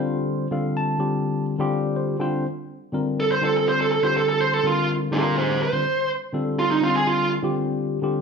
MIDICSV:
0, 0, Header, 1, 3, 480
1, 0, Start_track
1, 0, Key_signature, -1, "major"
1, 0, Tempo, 484653
1, 754, Time_signature, 7, 3, 24, 8
1, 8135, End_track
2, 0, Start_track
2, 0, Title_t, "Lead electric guitar"
2, 0, Program_c, 0, 29
2, 3171, Note_on_c, 0, 69, 95
2, 3278, Note_off_c, 0, 69, 0
2, 3287, Note_on_c, 0, 72, 71
2, 3396, Note_off_c, 0, 72, 0
2, 3412, Note_on_c, 0, 69, 86
2, 3518, Note_off_c, 0, 69, 0
2, 3541, Note_on_c, 0, 69, 78
2, 3643, Note_off_c, 0, 69, 0
2, 3654, Note_on_c, 0, 72, 78
2, 3760, Note_off_c, 0, 72, 0
2, 3777, Note_on_c, 0, 69, 73
2, 3870, Note_off_c, 0, 69, 0
2, 3882, Note_on_c, 0, 69, 72
2, 3993, Note_off_c, 0, 69, 0
2, 4004, Note_on_c, 0, 72, 68
2, 4115, Note_off_c, 0, 72, 0
2, 4130, Note_on_c, 0, 69, 86
2, 4238, Note_off_c, 0, 69, 0
2, 4253, Note_on_c, 0, 69, 84
2, 4363, Note_off_c, 0, 69, 0
2, 4363, Note_on_c, 0, 72, 77
2, 4495, Note_off_c, 0, 72, 0
2, 4495, Note_on_c, 0, 69, 69
2, 4600, Note_off_c, 0, 69, 0
2, 4623, Note_on_c, 0, 65, 77
2, 4841, Note_off_c, 0, 65, 0
2, 5079, Note_on_c, 0, 65, 83
2, 5086, Note_on_c, 0, 70, 74
2, 5310, Note_off_c, 0, 70, 0
2, 5316, Note_off_c, 0, 65, 0
2, 5321, Note_on_c, 0, 68, 68
2, 5327, Note_on_c, 0, 72, 72
2, 5541, Note_off_c, 0, 68, 0
2, 5551, Note_off_c, 0, 72, 0
2, 5575, Note_on_c, 0, 72, 80
2, 6030, Note_off_c, 0, 72, 0
2, 6528, Note_on_c, 0, 65, 103
2, 6637, Note_off_c, 0, 65, 0
2, 6647, Note_on_c, 0, 63, 75
2, 6769, Note_off_c, 0, 63, 0
2, 6769, Note_on_c, 0, 65, 86
2, 6878, Note_off_c, 0, 65, 0
2, 6887, Note_on_c, 0, 68, 82
2, 6997, Note_off_c, 0, 68, 0
2, 7004, Note_on_c, 0, 65, 83
2, 7232, Note_off_c, 0, 65, 0
2, 8135, End_track
3, 0, Start_track
3, 0, Title_t, "Tine electric piano"
3, 0, Program_c, 1, 4
3, 0, Note_on_c, 1, 50, 96
3, 0, Note_on_c, 1, 55, 94
3, 0, Note_on_c, 1, 60, 87
3, 0, Note_on_c, 1, 65, 90
3, 0, Note_on_c, 1, 72, 103
3, 456, Note_off_c, 1, 50, 0
3, 457, Note_off_c, 1, 55, 0
3, 461, Note_off_c, 1, 60, 0
3, 463, Note_off_c, 1, 65, 0
3, 464, Note_off_c, 1, 72, 0
3, 500, Note_on_c, 1, 50, 77
3, 503, Note_on_c, 1, 55, 77
3, 508, Note_on_c, 1, 60, 71
3, 515, Note_on_c, 1, 65, 70
3, 517, Note_on_c, 1, 77, 73
3, 520, Note_on_c, 1, 69, 74
3, 748, Note_off_c, 1, 77, 0
3, 760, Note_on_c, 1, 81, 98
3, 947, Note_off_c, 1, 50, 0
3, 948, Note_off_c, 1, 55, 0
3, 950, Note_off_c, 1, 60, 0
3, 954, Note_off_c, 1, 65, 0
3, 957, Note_off_c, 1, 69, 0
3, 972, Note_on_c, 1, 50, 72
3, 979, Note_on_c, 1, 55, 68
3, 984, Note_on_c, 1, 60, 62
3, 985, Note_on_c, 1, 65, 61
3, 987, Note_on_c, 1, 67, 81
3, 1436, Note_off_c, 1, 81, 0
3, 1532, Note_off_c, 1, 50, 0
3, 1536, Note_off_c, 1, 55, 0
3, 1538, Note_off_c, 1, 60, 0
3, 1538, Note_off_c, 1, 65, 0
3, 1540, Note_off_c, 1, 67, 0
3, 1569, Note_on_c, 1, 50, 98
3, 1577, Note_on_c, 1, 55, 93
3, 1581, Note_on_c, 1, 60, 88
3, 1584, Note_on_c, 1, 65, 89
3, 1591, Note_on_c, 1, 67, 115
3, 1945, Note_on_c, 1, 72, 71
3, 2130, Note_off_c, 1, 50, 0
3, 2135, Note_off_c, 1, 55, 0
3, 2136, Note_off_c, 1, 60, 0
3, 2138, Note_off_c, 1, 65, 0
3, 2142, Note_off_c, 1, 67, 0
3, 2170, Note_on_c, 1, 50, 94
3, 2171, Note_off_c, 1, 72, 0
3, 2177, Note_on_c, 1, 55, 78
3, 2179, Note_on_c, 1, 79, 69
3, 2183, Note_on_c, 1, 60, 84
3, 2188, Note_on_c, 1, 65, 86
3, 2191, Note_on_c, 1, 72, 98
3, 2408, Note_off_c, 1, 79, 0
3, 2421, Note_off_c, 1, 50, 0
3, 2424, Note_off_c, 1, 55, 0
3, 2427, Note_off_c, 1, 60, 0
3, 2430, Note_off_c, 1, 65, 0
3, 2431, Note_off_c, 1, 72, 0
3, 2895, Note_on_c, 1, 50, 81
3, 2904, Note_on_c, 1, 55, 73
3, 2905, Note_on_c, 1, 60, 75
3, 2908, Note_on_c, 1, 65, 67
3, 2915, Note_on_c, 1, 70, 87
3, 3344, Note_off_c, 1, 50, 0
3, 3348, Note_off_c, 1, 55, 0
3, 3349, Note_off_c, 1, 60, 0
3, 3350, Note_off_c, 1, 65, 0
3, 3354, Note_off_c, 1, 70, 0
3, 3380, Note_on_c, 1, 50, 72
3, 3383, Note_on_c, 1, 55, 72
3, 3386, Note_on_c, 1, 60, 73
3, 3391, Note_on_c, 1, 65, 69
3, 3396, Note_on_c, 1, 72, 87
3, 3936, Note_off_c, 1, 50, 0
3, 3938, Note_off_c, 1, 55, 0
3, 3939, Note_off_c, 1, 60, 0
3, 3942, Note_off_c, 1, 65, 0
3, 3944, Note_off_c, 1, 72, 0
3, 3989, Note_on_c, 1, 50, 72
3, 3994, Note_on_c, 1, 55, 55
3, 3995, Note_on_c, 1, 60, 63
3, 4002, Note_on_c, 1, 65, 68
3, 4006, Note_on_c, 1, 67, 75
3, 4541, Note_off_c, 1, 50, 0
3, 4543, Note_off_c, 1, 55, 0
3, 4544, Note_off_c, 1, 60, 0
3, 4548, Note_off_c, 1, 65, 0
3, 4550, Note_off_c, 1, 67, 0
3, 4585, Note_on_c, 1, 50, 70
3, 4590, Note_on_c, 1, 60, 68
3, 4591, Note_on_c, 1, 55, 63
3, 4601, Note_on_c, 1, 65, 66
3, 4602, Note_on_c, 1, 70, 72
3, 5029, Note_off_c, 1, 50, 0
3, 5032, Note_off_c, 1, 55, 0
3, 5032, Note_off_c, 1, 60, 0
3, 5037, Note_off_c, 1, 65, 0
3, 5038, Note_off_c, 1, 70, 0
3, 5061, Note_on_c, 1, 50, 87
3, 5067, Note_on_c, 1, 55, 68
3, 5071, Note_on_c, 1, 60, 74
3, 5075, Note_on_c, 1, 65, 69
3, 5079, Note_on_c, 1, 67, 84
3, 5617, Note_off_c, 1, 50, 0
3, 5621, Note_off_c, 1, 55, 0
3, 5622, Note_off_c, 1, 60, 0
3, 5624, Note_off_c, 1, 65, 0
3, 5626, Note_off_c, 1, 67, 0
3, 5668, Note_on_c, 1, 50, 75
3, 5673, Note_on_c, 1, 55, 63
3, 5679, Note_on_c, 1, 60, 61
3, 5682, Note_on_c, 1, 65, 64
3, 5686, Note_on_c, 1, 72, 82
3, 5790, Note_off_c, 1, 50, 0
3, 5793, Note_off_c, 1, 55, 0
3, 5796, Note_off_c, 1, 60, 0
3, 5797, Note_off_c, 1, 65, 0
3, 5799, Note_off_c, 1, 72, 0
3, 6264, Note_on_c, 1, 50, 77
3, 6273, Note_on_c, 1, 55, 84
3, 6276, Note_on_c, 1, 60, 83
3, 6280, Note_on_c, 1, 65, 73
3, 6282, Note_on_c, 1, 69, 89
3, 6709, Note_off_c, 1, 50, 0
3, 6714, Note_off_c, 1, 55, 0
3, 6715, Note_off_c, 1, 60, 0
3, 6717, Note_off_c, 1, 65, 0
3, 6718, Note_off_c, 1, 69, 0
3, 6747, Note_on_c, 1, 50, 87
3, 6749, Note_on_c, 1, 55, 72
3, 6756, Note_on_c, 1, 60, 70
3, 6761, Note_on_c, 1, 65, 70
3, 6766, Note_on_c, 1, 69, 90
3, 7301, Note_off_c, 1, 50, 0
3, 7302, Note_off_c, 1, 55, 0
3, 7305, Note_off_c, 1, 60, 0
3, 7308, Note_off_c, 1, 65, 0
3, 7311, Note_off_c, 1, 69, 0
3, 7352, Note_on_c, 1, 50, 86
3, 7354, Note_on_c, 1, 55, 74
3, 7356, Note_on_c, 1, 60, 75
3, 7363, Note_on_c, 1, 65, 71
3, 7370, Note_on_c, 1, 67, 93
3, 7904, Note_off_c, 1, 50, 0
3, 7904, Note_off_c, 1, 55, 0
3, 7906, Note_off_c, 1, 60, 0
3, 7909, Note_off_c, 1, 65, 0
3, 7913, Note_off_c, 1, 67, 0
3, 7943, Note_on_c, 1, 50, 83
3, 7949, Note_on_c, 1, 55, 71
3, 7951, Note_on_c, 1, 60, 70
3, 7956, Note_on_c, 1, 65, 74
3, 7960, Note_on_c, 1, 67, 83
3, 8135, Note_off_c, 1, 50, 0
3, 8135, Note_off_c, 1, 55, 0
3, 8135, Note_off_c, 1, 60, 0
3, 8135, Note_off_c, 1, 65, 0
3, 8135, Note_off_c, 1, 67, 0
3, 8135, End_track
0, 0, End_of_file